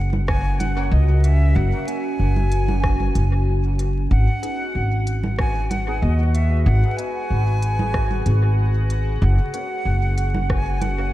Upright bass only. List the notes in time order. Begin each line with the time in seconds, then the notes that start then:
Already playing: F#1
0.92 C#2
1.56 F#1
2.19 F#1
3.15 F#1
4.11 G#1
4.75 G#1
6.02 D#2
6.66 G#1
7.30 G#1
8.26 G#1
9.22 F#1
9.85 F#1